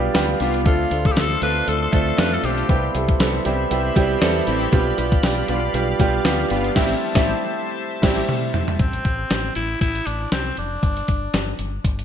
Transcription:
Already playing: grand piano G3 B3 D4 F4 G4, analog synth pad G4 D5 F5 B5
0.14 fingered electric bass D2, grand piano G3 B3 D4 F4 G4, analog polysynth B3 D4 F4, snare, closed hi-hat, tambourine
0.39 fingered electric bass C2, grand piano G3 B3 D4 F4 G4, analog polysynth B3 D4 F4, open hi-hat
0.54 closed hi-hat
0.65 fingered electric bass D2, grand piano A3 C4 D4 F4 A4, tenor saxophone F4, analog synth pad A4 C6, kick, closed hi-hat
0.90 fingered electric bass D2, grand piano A3 C4 D4 F4 A4, closed hi-hat
1.05 tenor saxophone A4, kick, closed hi-hat
1.12 grand piano A3 C4, tenor saxophone G4
1.16 fingered electric bass D2, grand piano D4 F4 A4, tenor saxophone A4, snare, closed hi-hat, tambourine
1.41 fingered electric bass D2, grand piano A3 C4 D4 F4 A4, analog polysynth C4 D4 F4, tenor saxophone B4, closed hi-hat
1.67 fingered electric bass D2, grand piano A3 C4 D4 F4 A4, tenor saxophone A4, closed hi-hat
1.82 tenor saxophone A4
1.92 fingered electric bass D2, grand piano A3 C4 D4 F4 A4, tenor saxophone A4, kick, closed hi-hat
2.17 fingered electric bass F2, grand piano A3 C4 D4 F4 A4, analog polysynth C4 D4 F4, tenor saxophone B4, snare, closed hi-hat, tambourine
2.34 tenor saxophone A4
2.43 fingered electric bass B1, grand piano A3 C4 D4 F4 C5, analog polysynth C4 D4 F4, tenor saxophone G4, closed hi-hat
2.58 closed hi-hat
2.68 fingered electric bass C2, grand piano G3 B3 C4 E4 G4, analog synth pad G4 C5 E5 B5, kick, closed hi-hat
2.94 fingered electric bass C2, grand piano G3 B3 C4 E4 A4, closed hi-hat
3.09 kick, closed hi-hat
3.20 fingered electric bass C2, grand piano G3 B3 C4 E4 A4, snare, closed hi-hat, tambourine
3.45 fingered electric bass C2, grand piano G3 B3 C4 E4 G4, analog polysynth C4 E4 G4, closed hi-hat
3.70 fingered electric bass C2, grand piano G3 B3 C4 E4 G4, closed hi-hat
3.96 fingered electric bass C2, grand piano G3 B3 C4 E4 G4, kick, closed hi-hat
4.21 fingered electric bass E2, grand piano G3 B3 C4 E4 A4, analog polysynth C4 E4 G4, snare, closed hi-hat, tambourine
4.46 fingered electric bass A1, grand piano G3 B3 C4 E4 G4, analog polysynth C4 E4 G4, closed hi-hat
4.61 closed hi-hat
4.72 fingered electric bass B1, grand piano G3 B3 D4 F4 G4, analog synth pad D5 F5, kick, closed hi-hat
4.97 fingered electric bass B1, grand piano G3 B3 D4 F4 G4, closed hi-hat
5.12 kick, closed hi-hat
5.23 fingered electric bass B1, grand piano G3 B3 D4 F4 G4, snare, closed hi-hat, tambourine
5.48 fingered electric bass B1, grand piano G3 B3 D4 F4 G4, analog polysynth B3 D4 F4, closed hi-hat
5.74 fingered electric bass B1, grand piano G3 B3 D4 F4 G4, closed hi-hat
5.99 fingered electric bass B1, grand piano G3 B3 D4 F4 G4, kick, closed hi-hat
6.25 fingered electric bass D2, grand piano G3 B3 D4 F4 G4, analog polysynth B3 D4 F4, snare, closed hi-hat, tambourine
6.50 fingered electric bass G1, grand piano G3 B3 D4 F4 G4, analog polysynth B3 D4 F4, closed hi-hat
6.64 closed hi-hat
6.75 fingered electric bass A1, grand piano G3 A3 C4 E4 G4, analog polysynth C4 E4 G4, analog synth pad C5 E5 A5, kick, snare, crash
7.15 fingered electric bass A1, grand piano G3 A3 C4 E4 G4, analog polysynth C4 E4 G4, kick, snare
8.02 fingered electric bass A1, grand piano G3 A3 C4 E4 G4, analog polysynth C4 E4 G4, kick, snare, crash
8.29 mid tom
8.54 floor tom
8.68 floor tom
8.79 fingered electric bass A1, tenor saxophone C4, kick, closed hi-hat
8.93 closed hi-hat
9.05 fingered electric bass A1, kick, closed hi-hat
9.30 fingered electric bass A1, snare, closed hi-hat
9.55 fingered electric bass A1, tenor saxophone E4, closed hi-hat
9.81 fingered electric bass A1, tenor saxophone E4, kick, closed hi-hat
9.95 closed hi-hat
10.07 fingered electric bass A1, tenor saxophone D4, closed hi-hat
10.32 fingered electric bass C2, tenor saxophone C4, snare, closed hi-hat
10.57 fingered electric bass F1, tenor saxophone D4, closed hi-hat
10.83 fingered electric bass G1, kick, closed hi-hat
10.97 closed hi-hat
11.08 fingered electric bass G1, kick, closed hi-hat
11.34 fingered electric bass G1, snare, closed hi-hat
11.59 fingered electric bass G1, closed hi-hat
11.85 fingered electric bass G1, kick, closed hi-hat
11.99 closed hi-hat

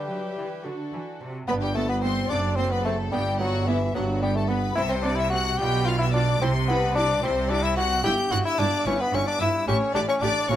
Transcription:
Already playing: bassoon G3, lute D4, viola section G4, violin section B4 E5
0.09 cello section F#3, lute F#3
0.37 cello section E3, lute E3
0.64 cello section D3, lute D3 A3 D4, viola section F#4, violin section A4 D5
0.93 cello section E3, lute E3
1.21 lute C3, cello section C3
1.48 double bass section G1, lute G2 B3 D4, cello section G2, bassoon B3, viola section B3, violin section B4 B5
1.61 bassoon G3, violin section G4 G5
1.74 bassoon A3, viola section B3, violin section A4 A5
1.88 bassoon B3, violin section B4 B5
2.01 viola section B3, bassoon C4, violin section C5 C6
2.29 double bass section F#1, cello section F#2, lute F#2 A3 C4 D4, viola section C4, bassoon D4, violin section D5 D6
2.56 bassoon C4, viola section C4, violin section C5 C6
2.70 bassoon B3, violin section B4 B5
2.85 bassoon A3, viola section C4, violin section A4 A5
3.12 double bass section G1, cello section G2, lute G2, bassoon G3, viola section B3, violin section G4 G5
3.39 bassoon F#3, viola section B3, violin section F#4 F#5
3.67 bassoon E3, viola section B3, violin section E4 E5
3.94 double bass section G1, cello section G2, lute G2 B3 D4, bassoon F#3, viola section B3, violin section F#4 F#5
4.22 bassoon G3, viola section B3, violin section G4 G5
4.36 bassoon A3, violin section A4 A5
4.49 bassoon B3, viola section B3, violin section B4 B5
4.76 double bass section C2, cello section C3, lute C3 C4, viola section C4, bassoon E4, violin section E5 E6
4.80 lute E4
4.89 bassoon C4, violin section C5 C6
5.03 viola section C4, bassoon D4, violin section D5 D6
5.16 bassoon E4, violin section E5 E6
5.30 viola section C4, bassoon F#4, violin section F#5 F#6
5.58 double bass section B1, cello section B2, lute B2 D4 F4, viola section F4, bassoon G4, violin section G5 G6
5.86 bassoon F4, viola section F4, violin section F5 F6
5.99 bassoon E4, violin section E5 E6
6.13 bassoon D4, viola section F4, violin section D5 D6
6.41 double bass section C2, cello section C3, lute C3, bassoon C4, viola section E4, violin section C5 C6
6.68 bassoon B3, viola section E4, violin section B4 B5
6.95 bassoon D4, viola section E4, violin section D5 D6
7.22 double bass section C2, cello section C3, lute C3 C4 E4, bassoon C4, viola section E4, violin section C5 C6
7.49 bassoon D4, viola section E4, violin section D5 D6
7.62 bassoon E4, violin section E5 E6
7.76 viola section E4, bassoon F#4, violin section F#5 F#6
8.04 double bass section G1, cello section G2, lute G2, viola section E4, bassoon G4, violin section G5 G6
8.31 double bass section G1, cello section G2, lute G2, viola section E4, bassoon F#4, violin section F#5 F#6
8.45 bassoon E4, violin section E5 E6
8.57 double bass section G1, cello section G2, lute G2, bassoon D4, viola section E4, violin section D5 D6
8.85 double bass section G1, cello section G2, lute G2 B3 E4, bassoon C#4, viola section E4, violin section C#5 C#6
8.99 bassoon B3, violin section B4 B5
9.12 double bass section G1, cello section G2, lute G2, bassoon C#4, viola section E4, violin section C#5 C#6
9.26 bassoon D4, violin section D5 D6
9.40 double bass section G1, cello section G2, lute G2, viola section E4, bassoon E4, violin section E5 E6
9.66 double bass section A1, cello section A2, lute A2 E4, bassoon C#4, viola section G4, violin section C#5 C#6
9.93 double bass section A1, cello section A2, lute A2, bassoon D4, viola section G4, violin section D5 D6
10.08 bassoon C#4, violin section C#5 C#6
10.21 double bass section A1, cello section A2, lute A2, bassoon D4, viola section G4, violin section D5 D6
10.48 double bass section A#1, cello section A#2, lute A#2 E4 F#4, bassoon C#4, viola section F#4, violin section C#5 C#6

